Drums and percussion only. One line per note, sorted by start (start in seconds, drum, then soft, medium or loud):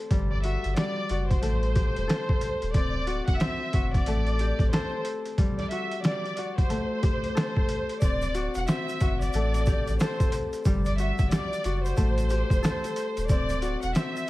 0.11 kick loud
0.11 closed hi-hat medium
0.44 closed hi-hat medium
0.64 closed hi-hat medium
0.76 snare loud
0.76 snare medium
0.76 closed hi-hat medium
1.09 closed hi-hat medium
1.31 kick medium
1.31 closed hi-hat medium
1.43 closed hi-hat medium
1.63 closed hi-hat soft
1.76 kick loud
1.76 closed hi-hat medium
1.96 closed hi-hat soft
2.09 snare loud
2.09 snare medium
2.09 closed hi-hat medium
2.29 kick medium
2.41 closed hi-hat medium
2.62 closed hi-hat medium
2.74 kick loud
2.74 closed hi-hat medium
3.07 closed hi-hat medium
3.28 kick medium
3.28 closed hi-hat medium
3.40 snare loud
3.40 snare medium
3.40 closed hi-hat medium
3.73 kick medium
3.73 closed hi-hat medium
3.94 kick medium
3.94 closed hi-hat soft
4.06 closed hi-hat medium
4.27 closed hi-hat soft
4.39 closed hi-hat medium
4.59 kick medium
4.59 closed hi-hat soft
4.73 snare loud
4.73 closed hi-hat medium
5.05 closed hi-hat medium
5.26 closed hi-hat medium
5.38 kick loud
5.38 closed hi-hat medium
5.59 snare soft
5.59 closed hi-hat soft
5.71 closed hi-hat medium
5.91 closed hi-hat medium
6.04 snare loud
6.04 snare medium
6.04 closed hi-hat medium
6.25 closed hi-hat soft
6.37 closed hi-hat medium
6.58 kick medium
6.58 closed hi-hat soft
6.70 closed hi-hat medium
7.03 kick loud
7.03 closed hi-hat medium
7.24 closed hi-hat soft
7.37 snare loud
7.37 closed hi-hat medium
7.56 kick loud
7.69 closed hi-hat medium
7.89 closed hi-hat medium
8.01 kick loud
8.01 closed hi-hat medium
8.01 shaker medium
8.22 closed hi-hat medium
8.22 shaker medium
8.35 closed hi-hat medium
8.35 shaker medium
8.55 closed hi-hat medium
8.55 shaker medium
8.68 snare loud
8.68 closed hi-hat medium
8.68 shaker medium
8.89 closed hi-hat soft
8.89 shaker medium
9.00 kick medium
9.00 closed hi-hat medium
9.00 shaker medium
9.21 closed hi-hat medium
9.21 shaker soft
9.33 closed hi-hat medium
9.33 shaker medium
9.54 snare soft
9.54 closed hi-hat medium
9.54 shaker medium
9.66 kick loud
9.66 closed hi-hat medium
9.66 shaker medium
9.87 closed hi-hat soft
9.87 shaker soft
10.00 snare loud
10.00 closed hi-hat medium
10.00 shaker medium
10.20 kick loud
10.20 closed hi-hat medium
10.20 shaker medium
10.32 closed hi-hat medium
10.32 shaker soft
10.53 closed hi-hat medium
10.53 shaker soft
10.65 kick loud
10.65 closed hi-hat medium
10.65 shaker medium
10.85 closed hi-hat medium
10.85 shaker medium
10.98 closed hi-hat medium
10.98 shaker medium
11.18 kick medium
11.18 closed hi-hat medium
11.18 shaker medium
11.31 snare loud
11.31 closed hi-hat medium
11.31 shaker medium
11.53 closed hi-hat soft
11.53 shaker medium
11.64 closed hi-hat medium
11.64 shaker medium
11.85 closed hi-hat medium
11.85 shaker soft
11.97 kick medium
11.97 closed hi-hat medium
11.97 shaker medium
12.18 closed hi-hat medium
12.18 shaker medium
12.30 closed hi-hat medium
12.30 shaker medium
12.50 kick loud
12.50 closed hi-hat soft
12.50 shaker soft
12.64 snare loud
12.64 closed hi-hat medium
12.64 shaker medium
12.84 closed hi-hat medium
12.84 shaker medium
12.96 closed hi-hat medium
12.96 shaker soft
13.17 closed hi-hat medium
13.17 shaker soft
13.29 kick loud
13.29 closed hi-hat medium
13.29 shaker medium
13.49 closed hi-hat medium
13.49 shaker medium
13.62 closed hi-hat medium
13.62 shaker soft
13.82 closed hi-hat medium
13.82 shaker medium
13.95 snare loud
13.95 closed hi-hat medium
13.95 shaker medium
14.16 closed hi-hat soft
14.16 shaker medium